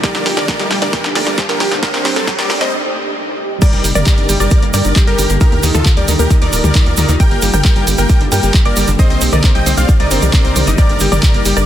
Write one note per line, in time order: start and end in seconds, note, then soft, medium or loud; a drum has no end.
0.00 0.09 G3 loud
0.00 0.27 A#4 medium
0.00 0.27 D5 loud
0.00 kick loud
0.00 snare medium
0.00 closed hi-hat medium
0.00 riser medium
0.15 0.20 D3 medium
0.15 snare medium
0.15 closed hi-hat medium
0.26 0.31 G4 loud
0.26 snare loud
0.26 open hi-hat loud
0.37 0.42 D3 medium
0.37 0.68 A#4 medium
0.37 0.68 D5 loud
0.37 0.68 D5 medium
0.37 snare medium
0.37 closed hi-hat medium
0.37 mid tom medium
0.48 0.53 A3 medium
0.48 kick loud
0.48 snare loud
0.48 closed hi-hat medium
0.59 0.62 G3 loud
0.59 snare medium
0.59 closed hi-hat medium
0.71 0.76 G3 loud
0.71 snare medium
0.71 open hi-hat medium
0.82 0.87 D3 medium
0.82 1.05 A#4 medium
0.82 1.05 D5 medium
0.82 1.05 D5 loud
0.82 snare medium
0.82 closed hi-hat medium
0.93 0.98 G4 loud
0.93 kick loud
0.93 snare loud
0.93 closed hi-hat loud
1.04 1.09 D3 medium
1.04 snare medium
1.04 closed hi-hat medium
1.15 1.21 A3 medium
1.15 1.39 A#4 medium
1.15 1.39 D5 loud
1.15 snare loud
1.15 open hi-hat loud
1.27 1.30 G3 loud
1.27 snare medium
1.27 closed hi-hat medium
1.38 1.43 G3 loud
1.38 kick loud
1.38 snare loud
1.38 closed hi-hat loud
1.49 1.54 D3 medium
1.49 1.73 G4 medium
1.49 1.72 A#4 loud
1.49 1.73 A#4 loud
1.49 snare medium
1.49 closed hi-hat medium
1.60 1.65 G4 loud
1.60 snare loud
1.60 open hi-hat medium
1.72 1.77 D3 medium
1.72 snare medium
1.72 closed hi-hat medium
1.83 1.88 D4 medium
1.83 2.06 G4 medium
1.83 2.06 A#4 loud
1.83 2.06 A#4 medium
1.83 kick loud
1.83 snare loud
1.83 closed hi-hat medium
1.94 1.97 C4 loud
1.94 snare medium
1.94 closed hi-hat medium
2.05 2.10 C4 loud
2.05 snare loud
2.05 open hi-hat loud
2.16 2.21 G3 medium
2.16 2.32 C4 medium
2.16 2.32 A4 medium
2.16 snare medium
2.16 closed hi-hat medium
2.16 mid tom medium
2.27 2.32 C5 loud
2.27 kick loud
2.27 snare loud
2.27 closed hi-hat loud
2.38 2.44 G3 medium
2.38 2.54 A#4 medium
2.38 2.54 D5 medium
2.38 2.54 D5 loud
2.38 snare loud
2.38 closed hi-hat medium
2.50 2.55 D4 medium
2.50 snare loud
2.50 open hi-hat medium
2.61 2.64 C4 loud
2.61 2.72 C5 medium
2.61 2.72 D#5 medium
2.61 2.72 D#5 loud
2.61 snare medium
2.61 closed hi-hat medium
3.62 3.65 G3 loud
3.62 3.85 A#4 medium
3.62 3.85 D5 loud
3.62 kick loud
3.62 closed hi-hat loud
3.62 crash loud
3.62 shaker soft
3.73 3.81 G1 medium
3.73 3.78 G3 loud
3.73 closed hi-hat medium
3.84 3.92 G1 loud
3.84 3.89 G3 medium
3.84 open hi-hat loud
3.84 shaker medium
3.95 4.03 G1 medium
3.95 4.03 A#3 medium
3.95 4.27 A#4 medium
3.95 4.26 D5 loud
3.95 4.27 D5 medium
3.95 closed hi-hat medium
3.95 mid tom medium
3.95 shaker medium
4.06 4.10 G3 loud
4.06 kick loud
4.06 clap loud
4.06 closed hi-hat loud
4.06 shaker soft
4.18 4.26 G1 medium
4.18 4.23 D3 medium
4.18 closed hi-hat medium
4.29 4.37 G1 loud
4.29 4.32 G3 loud
4.29 open hi-hat loud
4.29 shaker medium
4.40 4.48 G1 medium
4.40 4.45 G3 loud
4.40 4.64 A#4 medium
4.40 4.64 D5 medium
4.40 4.64 D5 loud
4.40 closed hi-hat medium
4.40 shaker medium
4.51 4.56 G3 medium
4.51 kick loud
4.51 closed hi-hat loud
4.51 shaker soft
4.62 4.71 G1 medium
4.62 4.70 A#3 medium
4.62 closed hi-hat medium
4.74 4.82 G2 loud
4.74 4.77 G3 loud
4.74 4.97 A#4 medium
4.74 4.97 D5 loud
4.74 open hi-hat loud
4.74 shaker medium
4.84 4.93 G1 medium
4.84 4.90 D3 medium
4.84 closed hi-hat medium
4.84 shaker soft
4.96 4.99 G3 loud
4.96 kick loud
4.96 clap loud
4.96 closed hi-hat loud
4.96 shaker soft
5.07 5.15 G1 medium
5.07 5.12 G3 loud
5.07 5.31 G4 medium
5.07 5.31 A#4 loud
5.07 5.31 A#4 medium
5.07 closed hi-hat medium
5.18 5.26 G1 loud
5.18 5.23 G3 medium
5.18 open hi-hat loud
5.18 shaker medium
5.29 5.38 G1 loud
5.29 5.37 A#3 medium
5.29 closed hi-hat medium
5.29 shaker medium
5.41 5.44 D#3 loud
5.41 5.64 G4 medium
5.41 5.64 A#4 loud
5.41 kick loud
5.41 closed hi-hat medium
5.41 shaker soft
5.52 5.60 D#2 medium
5.52 5.57 A#2 medium
5.52 closed hi-hat medium
5.63 5.71 D#2 loud
5.63 5.66 D#3 loud
5.63 open hi-hat loud
5.63 shaker loud
5.74 5.82 D#2 medium
5.74 5.79 D#3 loud
5.74 5.90 F4 medium
5.74 5.90 A4 medium
5.74 closed hi-hat medium
5.74 mid tom medium
5.74 shaker medium
5.86 kick loud
5.86 clap loud
5.86 closed hi-hat medium
5.86 shaker soft
5.97 6.05 D#2 medium
5.97 6.04 G3 medium
5.97 6.12 A#4 medium
5.97 6.12 D5 medium
5.97 6.13 D5 medium
5.97 closed hi-hat medium
6.08 6.16 D#2 loud
6.08 6.11 D#3 loud
6.08 open hi-hat loud
6.08 shaker loud
6.19 6.27 D#2 loud
6.19 6.24 A#2 medium
6.19 6.35 G4 medium
6.19 6.35 A#4 medium
6.19 closed hi-hat medium
6.19 shaker medium
6.30 6.33 D#3 loud
6.30 kick loud
6.30 closed hi-hat medium
6.30 shaker soft
6.42 6.50 D#2 medium
6.42 6.47 D#3 loud
6.42 7.11 A#4 medium
6.42 7.11 D5 loud
6.42 closed hi-hat medium
6.53 6.61 D#1 loud
6.53 6.58 D#3 medium
6.53 open hi-hat loud
6.53 shaker loud
6.64 6.72 D#2 medium
6.64 6.71 G3 medium
6.64 closed hi-hat medium
6.64 mid tom medium
6.64 shaker medium
6.75 6.78 D#3 loud
6.75 kick loud
6.75 clap loud
6.75 closed hi-hat loud
6.75 shaker soft
6.86 6.94 D#2 medium
6.86 6.91 A#2 medium
6.86 closed hi-hat medium
6.97 7.06 D#2 medium
6.97 7.01 D#3 loud
6.97 open hi-hat loud
6.97 mid tom medium
6.97 shaker loud
7.08 7.17 D#2 medium
7.08 7.14 D#3 loud
7.08 closed hi-hat medium
7.08 shaker medium
7.20 7.25 G3 medium
7.20 7.43 A#4 medium
7.20 7.43 G5 loud
7.20 kick loud
7.20 closed hi-hat medium
7.20 shaker soft
7.31 7.39 G1 medium
7.31 7.39 A#3 medium
7.31 closed hi-hat soft
7.42 7.50 G1 loud
7.42 7.45 G3 loud
7.42 open hi-hat loud
7.42 shaker medium
7.53 7.62 G1 medium
7.53 7.59 D3 medium
7.53 7.85 A#4 medium
7.53 7.85 G5 medium
7.53 7.85 G5 loud
7.53 closed hi-hat medium
7.53 mid tom medium
7.53 shaker medium
7.65 7.68 G3 loud
7.65 kick loud
7.65 clap loud
7.65 closed hi-hat medium
7.65 shaker soft
7.76 7.84 G1 medium
7.76 7.81 G3 loud
7.76 closed hi-hat medium
7.87 7.95 G1 loud
7.87 7.92 G3 medium
7.87 open hi-hat loud
7.87 shaker loud
7.98 8.06 G1 medium
7.98 8.06 A#3 medium
7.98 8.22 A#4 medium
7.98 8.22 G5 medium
7.98 8.22 G5 loud
7.98 closed hi-hat medium
7.98 shaker medium
8.09 8.13 G3 loud
8.09 kick loud
8.09 closed hi-hat medium
8.09 shaker soft
8.21 8.29 G1 medium
8.21 8.26 D3 medium
8.21 closed hi-hat medium
8.32 8.40 G2 loud
8.32 8.35 G3 loud
8.32 8.55 A#4 medium
8.32 8.55 G5 loud
8.32 open hi-hat loud
8.32 shaker medium
8.43 8.51 G1 medium
8.43 8.48 G3 loud
8.43 closed hi-hat medium
8.43 shaker medium
8.54 8.59 G3 medium
8.54 kick loud
8.54 clap loud
8.54 closed hi-hat medium
8.54 shaker soft
8.65 8.73 G1 medium
8.65 8.73 A#3 medium
8.65 8.89 A#4 medium
8.65 8.89 D5 loud
8.65 closed hi-hat medium
8.77 8.85 G1 loud
8.77 8.80 G3 loud
8.77 open hi-hat loud
8.77 shaker loud
8.87 8.96 G1 medium
8.87 8.93 D3 medium
8.87 closed hi-hat soft
8.87 shaker medium
8.99 9.02 C4 loud
8.99 9.22 C5 medium
8.99 9.22 D#5 loud
8.99 9.23 D#5 loud
8.99 kick loud
8.99 closed hi-hat medium
8.99 shaker soft
9.10 9.18 C2 medium
9.10 9.15 C4 loud
9.10 closed hi-hat soft
9.21 9.29 C2 loud
9.21 9.26 C4 medium
9.21 open hi-hat loud
9.21 shaker loud
9.32 9.41 C2 medium
9.32 9.40 D#4 medium
9.32 9.48 A#4 medium
9.32 9.48 D5 medium
9.32 closed hi-hat soft
9.32 mid tom medium
9.32 shaker medium
9.44 9.47 C4 loud
9.44 kick loud
9.44 clap loud
9.44 closed hi-hat medium
9.44 shaker soft
9.55 9.63 C2 medium
9.55 9.60 G3 medium
9.55 9.71 D#5 medium
9.55 9.71 G5 medium
9.55 closed hi-hat medium
9.66 9.74 C2 loud
9.66 9.69 C4 loud
9.66 open hi-hat loud
9.66 shaker loud
9.77 9.85 C2 medium
9.77 9.82 C4 loud
9.77 9.93 D5 medium
9.77 9.93 F5 medium
9.77 closed hi-hat soft
9.77 shaker medium
9.88 9.94 C4 medium
9.88 kick loud
9.88 closed hi-hat medium
9.88 shaker soft
10.00 10.08 C2 medium
10.00 10.07 D#4 medium
10.00 10.69 A#4 medium
10.00 10.69 D5 loud
10.00 closed hi-hat medium
10.11 10.19 G1 loud
10.11 10.14 C4 loud
10.11 open hi-hat loud
10.11 shaker loud
10.22 10.30 C2 medium
10.22 10.27 G3 medium
10.22 closed hi-hat medium
10.22 mid tom medium
10.22 shaker medium
10.33 10.36 C4 loud
10.33 kick loud
10.33 clap loud
10.33 closed hi-hat medium
10.33 shaker soft
10.45 10.53 C2 medium
10.45 10.50 C4 loud
10.45 closed hi-hat medium
10.56 10.64 C2 loud
10.56 10.61 C4 medium
10.56 open hi-hat loud
10.56 mid tom medium
10.56 shaker loud
10.67 10.75 G1 medium
10.67 10.75 D#4 medium
10.67 closed hi-hat medium
10.67 shaker medium
10.78 10.81 G3 loud
10.78 11.02 A#4 medium
10.78 11.02 D5 loud
10.78 kick loud
10.78 closed hi-hat medium
10.78 shaker soft
10.89 10.97 G1 medium
10.89 10.94 D3 medium
10.89 closed hi-hat medium
11.00 11.09 G1 loud
11.00 11.04 G3 loud
11.00 open hi-hat loud
11.00 shaker loud
11.12 11.20 G1 medium
11.12 11.17 G3 medium
11.12 11.43 A#4 medium
11.12 11.43 D5 loud
11.12 11.43 D5 medium
11.12 closed hi-hat medium
11.12 mid tom medium
11.12 shaker medium
11.23 11.28 G3 medium
11.23 kick loud
11.23 clap loud
11.23 closed hi-hat medium
11.23 shaker soft
11.34 11.42 G1 medium
11.34 11.42 A#3 medium
11.34 closed hi-hat medium
11.45 11.53 G1 loud
11.45 11.48 G3 loud
11.45 open hi-hat loud
11.45 shaker medium
11.57 11.65 G1 medium
11.57 11.62 D3 medium
11.57 11.66 A#4 medium
11.57 11.66 D5 medium
11.57 11.66 D5 loud
11.57 closed hi-hat medium
11.57 shaker medium